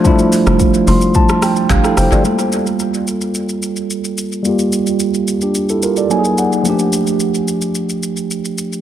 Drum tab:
HH |--o---o---o---o-|----------------|----------------|----------------|
SH |xxxxxxxxxxxxxxxx|xxxxxxxxxxxxxxxx|xxxxxxxxxxxxxxxx|xxxxxxxxxxxxxxxx|
CP |------------x---|----------------|----------------|----------------|
SD |---r-----rr--rr-|----------------|----------------|----------------|
BD |o---o---o---o---|----------------|----------------|----------------|